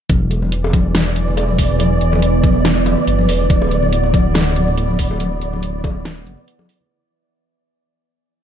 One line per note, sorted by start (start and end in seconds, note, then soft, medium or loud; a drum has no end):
0.09 2.00 E1 loud
0.09 6.95 E3 medium
0.09 6.95 B3 medium
0.09 6.91 D5 medium
0.09 kick loud
0.09 closed hi-hat medium
0.09 high conga medium
0.31 closed hi-hat medium
0.31 high bongo soft
0.42 high conga medium
0.42 low conga medium
0.52 closed hi-hat medium
0.64 high bongo medium
0.73 kick loud
0.73 closed hi-hat medium
0.73 high conga loud
0.95 snare loud
0.95 closed hi-hat medium
1.06 high bongo medium
1.16 closed hi-hat medium
1.16 high conga medium
1.28 low conga medium
1.37 closed hi-hat medium
1.37 high bongo medium
1.49 high conga medium
1.59 kick medium
1.59 open hi-hat loud
1.70 low conga medium
1.79 closed hi-hat medium
1.79 high bongo medium
1.79 high conga medium
2.01 2.96 E1 medium
2.01 closed hi-hat medium
2.12 high bongo medium
2.12 high conga medium
2.12 low conga medium
2.22 closed hi-hat medium
2.44 kick loud
2.44 closed hi-hat medium
2.44 high conga loud
2.54 high bongo soft
2.65 snare loud
2.65 closed hi-hat medium
2.86 closed hi-hat medium
2.86 high bongo medium
2.86 high conga medium
2.97 low conga medium
3.07 3.27 G1 medium
3.07 closed hi-hat medium
3.19 high conga loud
3.29 3.48 E1 medium
3.29 open hi-hat loud
3.29 high bongo medium
3.40 low conga medium
3.50 5.40 D1 loud
3.50 kick loud
3.50 closed hi-hat medium
3.50 high conga loud
3.62 high bongo medium
3.71 closed hi-hat medium
3.83 high conga medium
3.83 low conga medium
3.93 closed hi-hat medium
4.04 high bongo medium
4.13 kick loud
4.13 closed hi-hat medium
4.13 high conga loud
4.34 snare loud
4.34 closed hi-hat medium
4.34 high bongo medium
4.56 closed hi-hat medium
4.56 high conga medium
4.68 low conga medium
4.77 closed hi-hat medium
4.77 high bongo soft
4.88 high conga loud
4.99 kick medium
4.99 open hi-hat loud
5.10 high bongo medium
5.10 low conga medium
5.20 closed hi-hat medium
5.20 high conga medium
5.41 6.26 D1 medium
5.41 closed hi-hat medium
5.53 high bongo soft
5.53 high conga medium
5.53 low conga medium
5.63 closed hi-hat medium
5.84 kick loud
5.84 closed hi-hat medium
5.84 high bongo medium
5.84 high conga medium
6.05 snare loud
6.05 closed hi-hat medium
6.26 6.37 F#1 medium
6.26 closed hi-hat medium
6.26 high bongo soft
6.26 high conga medium
6.37 low conga medium
6.48 closed hi-hat medium
6.59 high bongo medium
6.59 high conga medium
6.69 open hi-hat medium
6.80 low conga medium